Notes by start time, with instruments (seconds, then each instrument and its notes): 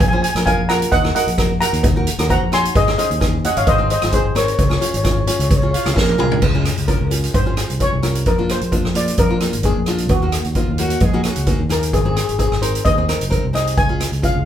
Already playing: fingered electric bass A#1
0.00 steel pan G#5, kick, closed hi-hat, cowbell
0.08 nylon-string guitar C#4, steel pan G#5
0.13 nylon-string guitar F4 C5, steel pan G#5
0.22 steel pan G#5, closed hi-hat
0.31 steel pan G#5
0.35 fingered electric bass A#1, nylon-string guitar C#4 F4 A#4, cross-stick, closed hi-hat
0.46 nylon-string guitar C#4 F4 A#4, steel pan F5 G#5, kick, closed hi-hat, cowbell
0.58 fingered electric bass A#1
0.69 nylon-string guitar C#4 F4 A#4, steel pan F#5 A#5, cross-stick, closed hi-hat
0.82 closed hi-hat
0.92 fingered electric bass D#2, steel pan D#5 F#5, kick, closed hi-hat, cowbell
1.04 nylon-string guitar D#4 F#4 A#4, cross-stick
1.15 nylon-string guitar D#4 F#4 A#4, steel pan D#5 F#5, closed hi-hat
1.27 fingered electric bass A#1, closed hi-hat
1.38 nylon-string guitar D#4 F#4 A#4, kick, cross-stick, closed hi-hat, cowbell
1.61 nylon-string guitar D#4 F#4 A#4, steel pan F#5 A#5, closed hi-hat
1.73 fingered electric bass D#2, closed hi-hat
1.83 kick, closed hi-hat, cowbell
1.96 nylon-string guitar D#4 F#4 A#4
2.07 closed hi-hat
2.19 fingered electric bass D#2, nylon-string guitar D#4 F#4 A#4, cross-stick, closed hi-hat
2.29 nylon-string guitar D#4 F#4 C5, steel pan F#5 A#5, kick, closed hi-hat, cowbell
2.41 fingered electric bass A#1
2.52 nylon-string guitar D#4 F#4 C#5, steel pan G#5 C6, cross-stick, closed hi-hat
2.65 closed hi-hat
2.75 fingered electric bass G#1, steel pan G#4 D#5, kick, closed hi-hat, cowbell
2.87 nylon-string guitar C#4 D#4 G#4, cross-stick
2.98 nylon-string guitar C#4 D#4 G#4, steel pan C5 D#5, closed hi-hat
3.11 fingered electric bass D#2, closed hi-hat
3.20 nylon-string guitar C#4 D#4 G#4, kick, cross-stick, closed hi-hat, cowbell
3.44 nylon-string guitar C#4 D#4 G#4, steel pan D#5 F#5, closed hi-hat
3.57 fingered electric bass G#1, steel pan C#5 F5, closed hi-hat
3.67 fingered electric bass G#1, steel pan C5 D#5, kick, closed hi-hat, cowbell
3.78 nylon-string guitar C4 D#4 G#4
3.90 steel pan C5 D#5, closed hi-hat
4.02 fingered electric bass G#1, nylon-string guitar C4 D#4 F4, cross-stick, closed hi-hat
4.11 nylon-string guitar C4 D#4 G#4, steel pan G#4 C5, kick, closed hi-hat, cowbell
4.25 fingered electric bass G#1
4.35 nylon-string guitar C4 D#4 A#4, steel pan A#4 C#5, cross-stick, closed hi-hat
4.44 steel pan C#5, closed hi-hat
4.53 steel pan C#5
4.59 fingered electric bass C#2, steel pan C#5, kick, closed hi-hat, cowbell
4.67 nylon-string guitar C#4 F4 G#4, steel pan C#5, cross-stick
4.75 steel pan C#5
4.81 nylon-string guitar C#4 F4 G#4, steel pan C#5, closed hi-hat
4.90 fingered electric bass G#1, steel pan C#5, closed hi-hat
4.97 steel pan C#5
5.04 nylon-string guitar C#4 F4 G#4, steel pan C#5, kick, cross-stick, closed hi-hat, cowbell
5.13 steel pan C#5
5.20 steel pan C#5
5.27 nylon-string guitar C#4 F4 G#4, steel pan C#5, closed hi-hat
5.35 steel pan C#5
5.39 fingered electric bass C#2, steel pan C#5, closed hi-hat
5.49 steel pan C#5, kick, closed hi-hat, cowbell
5.56 steel pan C#5
5.62 nylon-string guitar C#4 F4 G#4, steel pan C#5
5.71 horn section F4 F5, steel pan C#5, closed hi-hat
5.78 steel pan C#5
5.85 fingered electric bass C#2, nylon-string guitar C#4 F4 G#4, cross-stick, closed hi-hat
5.95 fingered electric bass A#1, horn section A#3 A#4, nylon-string guitar C#4 F4 G#4, kick, snare, cowbell
6.09 high tom
6.18 fingered electric bass C2, nylon-string guitar C#4 F4 G#4, mid tom
6.32 floor tom
6.42 fingered electric bass C#2, kick, crash, cowbell
6.55 nylon-string guitar C#4 F4 G#4
6.65 cross-stick, closed hi-hat
6.78 fingered electric bass C#2, closed hi-hat
6.88 nylon-string guitar C#4 F4 A#4, steel pan A#4, kick, closed hi-hat, cowbell
7.01 fingered electric bass C#2
7.11 nylon-string guitar C#4 F4 G#4, closed hi-hat
7.24 closed hi-hat
7.34 fingered electric bass G#1, steel pan C5, kick, closed hi-hat, cowbell
7.46 nylon-string guitar C#4 F4 G#4
7.57 nylon-string guitar C#4 F4 G#4, cross-stick, closed hi-hat
7.70 fingered electric bass C2, closed hi-hat
7.80 nylon-string guitar C#4 F4 G#4, steel pan C#5, kick, closed hi-hat, cowbell
7.93 fingered electric bass C2
8.03 nylon-string guitar C#4 F4 A#4, cross-stick, closed hi-hat
8.15 closed hi-hat
8.26 fingered electric bass A#1, steel pan A#4, kick, closed hi-hat, cowbell
8.38 nylon-string guitar A#3 D4 F4
8.49 steel pan C5, cross-stick, closed hi-hat
8.61 fingered electric bass A#1, closed hi-hat
8.72 nylon-string guitar A#3 D4 F4, kick, closed hi-hat, cowbell
8.84 fingered electric bass A#1, cross-stick
8.94 nylon-string guitar A#3 D4 F4, steel pan D5, closed hi-hat
9.08 closed hi-hat
9.18 fingered electric bass F2, steel pan A#4, kick, closed hi-hat, cowbell
9.29 nylon-string guitar A#3 D4 F4
9.40 nylon-string guitar A#3 D4 F4, cross-stick, closed hi-hat
9.53 fingered electric bass G#1, closed hi-hat
9.63 nylon-string guitar A#3 D4 G#4, steel pan G#4, kick, closed hi-hat, cowbell
9.77 fingered electric bass A#1
9.86 nylon-string guitar A#3 D4 F4, cross-stick, closed hi-hat
9.98 closed hi-hat
10.09 fingered electric bass D#2, steel pan F#4, kick, closed hi-hat, cowbell
10.22 nylon-string guitar A#3 D#4 F#4
10.32 cross-stick, closed hi-hat
10.44 fingered electric bass D#2, closed hi-hat
10.55 horn section F3 F4, nylon-string guitar A#3 D#4 F4, kick, closed hi-hat, cowbell
10.68 fingered electric bass D#2
10.78 horn section F#3 F#4, nylon-string guitar A#3 D#4 F#4, closed hi-hat
10.90 closed hi-hat
11.00 fingered electric bass A#1, horn section G#3 G#4, kick, closed hi-hat, cowbell
11.13 nylon-string guitar A#3 D#4 F#4
11.24 horn section F#3 F#4, nylon-string guitar A#3 D#4 G#4, cross-stick, closed hi-hat
11.36 fingered electric bass C#2, closed hi-hat
11.46 nylon-string guitar A#3 D#4 G#4, kick, closed hi-hat, cowbell
11.59 fingered electric bass D#2
11.69 nylon-string guitar A#3 D#4 G#4, steel pan A#4, cross-stick, closed hi-hat
11.83 closed hi-hat
11.93 fingered electric bass G#1, steel pan G#4, kick, closed hi-hat, cowbell
12.01 steel pan G#4
12.05 nylon-string guitar C4 D#4 G#4, steel pan G#4
12.16 steel pan G#4, cross-stick, closed hi-hat
12.24 steel pan G#4
12.29 fingered electric bass G#1, steel pan G#4, closed hi-hat
12.38 nylon-string guitar C4 D#4 G#4, steel pan G#4, kick, closed hi-hat, cowbell
12.47 steel pan G#4
12.52 fingered electric bass G#1, cross-stick
12.62 nylon-string guitar C4 D#4 A#4, steel pan C5, closed hi-hat
12.75 closed hi-hat
12.85 fingered electric bass D#2, steel pan D#5, kick, closed hi-hat, cowbell
12.98 nylon-string guitar C4 D#4 G#4
13.08 nylon-string guitar C4 D#4 A#4, cross-stick, closed hi-hat
13.21 fingered electric bass F#1, closed hi-hat
13.30 nylon-string guitar C4 D#4 A#4, kick, closed hi-hat, cowbell
13.44 fingered electric bass C2
13.53 nylon-string guitar C4 D#4 G#4, steel pan D#5, cross-stick, closed hi-hat
13.67 closed hi-hat
13.78 fingered electric bass C#2, steel pan G#5, kick, closed hi-hat, cowbell
13.89 nylon-string guitar C#4 F4 G#4
14.00 cross-stick, closed hi-hat
14.12 fingered electric bass C#2, closed hi-hat
14.22 nylon-string guitar C#4 F4 G#4, steel pan F5, kick, closed hi-hat, cowbell
14.35 fingered electric bass C#2